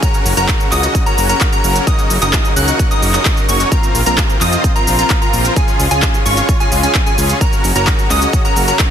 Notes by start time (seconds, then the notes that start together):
Already playing: C#3
0.03 F#3 A#3 C#4 F#4 A#4 A#5, kick, closed hi-hat, shaker
0.14 closed hi-hat, shaker
0.26 F#1, open hi-hat, shaker
0.37 F#1 C#4 F#4 A#4 A#5, closed hi-hat, shaker
0.48 kick, clap, closed hi-hat, shaker
0.60 closed hi-hat, shaker
0.72 C#2 C#4 F#4 D#5 D#6, clap, open hi-hat, shaker
0.83 closed hi-hat, shaker
0.95 kick, closed hi-hat, shaker
1.06 C#4 F#4 A#4 A#5, closed hi-hat, shaker
1.18 F#1, open hi-hat, shaker
1.29 C#4 F#4 A#4 A#5, closed hi-hat, shaker
1.41 kick, clap, closed hi-hat, shaker
1.53 C#4 F#4 A#4 A#5, closed hi-hat, shaker
1.64 F#1, open hi-hat, shaker
1.76 closed hi-hat, shaker
1.87 C#4 D#4 F#4 A#4 D#5 D#6, kick, closed hi-hat, shaker
1.99 closed hi-hat, shaker
2.10 F#1, open hi-hat, shaker
2.22 F#1 C#4 D#4 F#4 A#4 D#5 D#6, closed hi-hat, shaker
2.33 kick, clap, closed hi-hat, shaker
2.45 closed hi-hat, shaker
2.56 C#2 C#4 D#4 F#4 A#4 F#5 F#6, open hi-hat, shaker
2.68 closed hi-hat, shaker
2.79 kick, closed hi-hat, shaker
2.91 C#4 D#4 F#4 A#4 D#5 D#6, closed hi-hat, shaker
3.02 F#1, open hi-hat, shaker
3.14 C#4 D#4 F#4 A#4 D#5 D#6, clap, closed hi-hat, shaker
3.25 kick, clap, closed hi-hat, shaker
3.37 closed hi-hat, shaker
3.49 F#1 C#4 D#4 F#4 A#4 C#5 C#6, open hi-hat, shaker
3.60 closed hi-hat, shaker
3.72 C3 F3 C4 F4 A#4 A#5, kick, closed hi-hat, shaker
3.83 closed hi-hat, shaker
3.95 A#1, open hi-hat, shaker
4.06 A#1 C4 F4 A#4 A#5, closed hi-hat, shaker
4.18 kick, clap, closed hi-hat, shaker
4.29 closed hi-hat, shaker
4.41 F2 C4 F4 D#5 D#6, clap, open hi-hat, shaker
4.53 closed hi-hat, shaker
4.64 kick, closed hi-hat, shaker
4.76 C4 F4 A#4 A#5, closed hi-hat, shaker
4.87 A#1, open hi-hat, shaker
4.99 C4 F4 A#4 A#5, closed hi-hat, shaker
5.10 kick, clap, closed hi-hat, shaker
5.22 C4 F4 A#4 A#5, closed hi-hat, shaker
5.33 A#1, open hi-hat, shaker
5.45 closed hi-hat, shaker
5.56 C#3 G#3 C#4 F4 G#4 G#5, kick, closed hi-hat, shaker
5.68 closed hi-hat, shaker
5.79 C#2, open hi-hat, shaker
5.91 C#2 C#4 F4 G#4 G#5, closed hi-hat, shaker
6.02 kick, clap, closed hi-hat, shaker
6.14 closed hi-hat, shaker
6.26 G#1 C#4 F4 C#5 C#6, open hi-hat, shaker
6.37 closed hi-hat, shaker
6.49 kick, closed hi-hat, shaker
6.60 C#4 F4 G#4 G#5, closed hi-hat, shaker
6.72 C#2, open hi-hat, shaker
6.83 C#4 F4 G#4 G#5, closed hi-hat, shaker
6.95 kick, clap, closed hi-hat, shaker
7.06 C#4 F4 G#4 G#5, closed hi-hat, shaker
7.18 C#2, open hi-hat, shaker
7.30 closed hi-hat, shaker
7.41 F#3 A#3 C#4 F#4 A#4 A#5, kick, closed hi-hat, shaker
7.53 closed hi-hat, shaker
7.64 F#1, open hi-hat, shaker
7.76 F#1 C#4 F#4 A#4 A#5, closed hi-hat, shaker
7.87 kick, clap, closed hi-hat, shaker
7.99 closed hi-hat, shaker
8.10 C#2 C#4 F#4 D#5 D#6, clap, open hi-hat, shaker
8.22 closed hi-hat, shaker
8.33 kick, closed hi-hat, shaker
8.45 C#4 F#4 A#4 A#5, closed hi-hat, shaker
8.56 F#1, open hi-hat, shaker
8.68 C#4 F#4 A#4 A#5, closed hi-hat, shaker
8.79 kick, clap, closed hi-hat, shaker